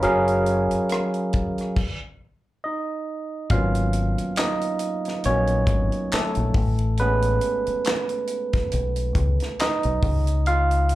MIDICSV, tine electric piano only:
0, 0, Header, 1, 2, 480
1, 0, Start_track
1, 0, Tempo, 869565
1, 14, Time_signature, 4, 2, 24, 8
1, 6044, End_track
2, 0, Start_track
2, 0, Title_t, "Tine electric piano"
2, 0, Program_c, 0, 4
2, 0, Control_c, 0, 64, 127
2, 0, Note_on_c, 0, 75, 38
2, 0, Note_on_c, 0, 83, 47
2, 13, Note_on_c, 0, 54, 97
2, 15, Note_on_c, 0, 61, 96
2, 17, Note_on_c, 0, 68, 85
2, 21, Control_c, 0, 64, 0
2, 22, Note_on_c, 0, 70, 92
2, 24, Note_on_c, 0, 77, 105
2, 111, Control_c, 0, 64, 127
2, 143, Note_off_c, 0, 83, 0
2, 144, Note_off_c, 0, 75, 0
2, 854, Note_off_c, 0, 54, 0
2, 854, Note_off_c, 0, 61, 0
2, 855, Note_off_c, 0, 68, 0
2, 858, Note_off_c, 0, 70, 0
2, 859, Note_off_c, 0, 77, 0
2, 980, Control_c, 0, 64, 0
2, 1457, Note_on_c, 0, 75, 77
2, 1466, Note_on_c, 0, 63, 51
2, 1918, Note_off_c, 0, 63, 0
2, 1937, Note_on_c, 0, 77, 90
2, 1940, Note_on_c, 0, 54, 52
2, 1943, Note_on_c, 0, 58, 50
2, 1945, Note_on_c, 0, 59, 50
2, 1947, Note_on_c, 0, 61, 54
2, 1947, Note_on_c, 0, 65, 71
2, 1950, Note_off_c, 0, 75, 0
2, 2041, Control_c, 0, 64, 127
2, 2268, Note_off_c, 0, 54, 0
2, 2269, Note_off_c, 0, 58, 0
2, 2270, Note_off_c, 0, 59, 0
2, 2271, Note_off_c, 0, 61, 0
2, 2393, Note_off_c, 0, 77, 0
2, 2399, Note_off_c, 0, 65, 0
2, 2414, Note_on_c, 0, 75, 83
2, 2425, Note_on_c, 0, 63, 65
2, 2878, Note_off_c, 0, 63, 0
2, 2901, Note_on_c, 0, 54, 45
2, 2901, Note_on_c, 0, 73, 91
2, 2903, Note_on_c, 0, 58, 44
2, 2904, Note_on_c, 0, 59, 41
2, 2906, Note_on_c, 0, 61, 66
2, 2909, Note_off_c, 0, 75, 0
2, 3115, Note_off_c, 0, 54, 0
2, 3116, Note_off_c, 0, 58, 0
2, 3117, Note_off_c, 0, 59, 0
2, 3358, Note_off_c, 0, 61, 0
2, 3385, Note_on_c, 0, 69, 75
2, 3392, Note_off_c, 0, 73, 0
2, 3392, Note_on_c, 0, 57, 63
2, 3620, Control_c, 0, 64, 0
2, 3704, Control_c, 0, 64, 127
2, 3841, Note_off_c, 0, 57, 0
2, 3862, Note_on_c, 0, 71, 95
2, 3863, Note_on_c, 0, 56, 55
2, 3866, Note_on_c, 0, 59, 72
2, 3868, Note_on_c, 0, 61, 58
2, 3874, Note_off_c, 0, 69, 0
2, 4556, Note_off_c, 0, 56, 0
2, 4559, Note_off_c, 0, 61, 0
2, 5281, Note_off_c, 0, 59, 0
2, 5300, Note_on_c, 0, 75, 83
2, 5306, Note_on_c, 0, 63, 75
2, 5341, Note_off_c, 0, 71, 0
2, 5542, Control_c, 0, 64, 0
2, 5637, Control_c, 0, 64, 127
2, 5758, Note_off_c, 0, 63, 0
2, 5779, Note_on_c, 0, 77, 103
2, 5785, Note_on_c, 0, 65, 82
2, 5791, Note_off_c, 0, 75, 0
2, 6044, Note_off_c, 0, 65, 0
2, 6044, Note_off_c, 0, 77, 0
2, 6044, End_track
0, 0, End_of_file